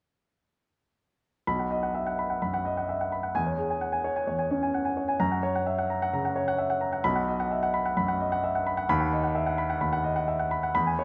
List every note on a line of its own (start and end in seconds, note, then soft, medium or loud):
1.47 2.39 B1 medium
1.47 1.66 B5 medium
1.59 1.78 F#5 soft
1.71 1.89 D#5 soft
1.83 2.01 F#5 medium
1.95 2.06 E5 soft
2.07 2.25 F#5 medium
2.19 2.37 B5 soft
2.30 2.48 F#5 medium
2.42 2.61 F#2 soft
2.42 2.60 B5 soft
2.54 2.72 F#5 medium
2.65 2.84 D#5 soft
2.77 2.96 F#5 soft
2.89 3.00 E5 soft
3.01 3.19 F#5 medium
3.12 3.30 B5 soft
3.23 3.35 F#5 medium
3.35 4.24 E2 medium
3.35 3.53 G#5 medium
3.47 3.65 C#5 soft
3.58 3.76 G#4 medium
3.70 3.88 G#5 soft
3.81 3.93 F#5 soft
3.92 4.11 G#5 medium
4.04 4.23 C#5 medium
4.16 4.34 G#5 soft
4.27 5.17 E2 soft
4.27 4.45 C#5 medium
4.39 4.57 G#5 soft
4.51 4.69 C#4 soft
4.51 4.69 C#5 soft
4.63 4.81 G#5 medium
4.74 4.85 F#5 medium
4.85 5.03 G#5 soft
4.97 5.15 C#5 soft
5.08 5.20 G#5 medium
5.20 6.10 F#2 medium
5.20 5.38 A#5 medium
5.32 5.50 F#5 soft
5.43 5.62 C#5 medium
5.55 5.74 F#5 medium
5.66 5.78 E5 medium
5.79 5.97 F#5 medium
5.90 6.08 A#5 medium
6.02 6.20 F#5 medium
6.13 6.31 C#3 soft
6.13 6.32 A#5 medium
6.25 6.43 F#5 medium
6.36 6.54 C#5 medium
6.48 6.66 F#5 medium
6.58 6.70 E5 soft
6.70 6.88 F#5 medium
6.81 7.00 A#5 medium
6.93 7.05 F#5 medium
7.04 7.94 B1 medium
7.04 7.23 B5 medium
7.16 7.35 F#5 medium
7.28 7.47 D#5 medium
7.40 7.58 F#5 medium
7.51 7.63 E5 soft
7.63 7.81 F#5 medium
7.74 7.92 B5 medium
7.86 8.04 F#5 medium
7.97 8.15 F#2 medium
7.97 8.15 B5 medium
8.08 8.27 F#5 medium
8.20 8.38 D#5 medium
8.32 8.50 F#5 medium
8.44 8.55 E5 medium
8.55 8.73 F#5 medium
8.67 8.84 B5 medium
8.77 8.89 F#5 medium
8.89 9.78 D#2 medium
8.89 9.07 B5 medium
9.00 9.18 F#5 medium
9.12 9.30 D#5 medium
9.23 9.42 F#5 medium
9.35 9.46 E5 soft
9.47 9.65 F#5 medium
9.58 9.76 B5 medium
9.70 9.88 F#5 medium
9.81 10.72 D#2 medium
9.81 9.99 B5 medium
9.93 10.11 F#5 medium
10.04 10.23 D#5 medium
10.16 10.35 F#5 medium
10.28 10.39 E5 medium
10.39 10.58 F#5 medium
10.51 10.70 B5 medium
10.63 10.75 F#5 medium
10.75 11.04 E2 medium
10.75 10.94 B5 medium
10.87 11.04 G#5 medium
10.99 11.04 C#5 medium